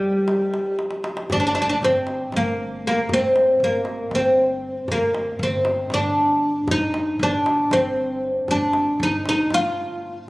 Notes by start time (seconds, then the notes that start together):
Already playing: G3
0.28 darbuka tek
0.54 darbuka tek
0.79 darbuka tek
0.91 darbuka ka
1.04 darbuka tek
1.17 darbuka ka
1.30 G1 D4, darbuka dum
1.40 D4
1.47 D4
1.55 D4, darbuka tek
1.62 D4
1.69 D4
1.82 G1 C4, darbuka ka
2.07 darbuka tek
2.32 G1, darbuka tek
2.36 A#3
2.87 A#3
3.09 G1, darbuka dum
3.13 C4
3.36 darbuka tek
3.60 G1, darbuka ka
3.64 A#3
3.85 darbuka tek
4.11 G1 C4, darbuka tek
4.88 G1 A#3, darbuka dum
5.15 darbuka tek
5.39 G1 C4, darbuka ka
5.65 darbuka tek
5.90 G1 D4, darbuka tek
6.67 G1 D#4, darbuka dum
6.94 darbuka tek
7.19 G1 D4, darbuka ka
7.46 darbuka tek
7.71 G1 C4, darbuka tek
8.23 darbuka ka
8.48 G1 D4, darbuka dum
8.73 darbuka tek
9.00 G1 D#4, darbuka ka
9.26 D#4, darbuka tek
9.50 G1 F4, darbuka tek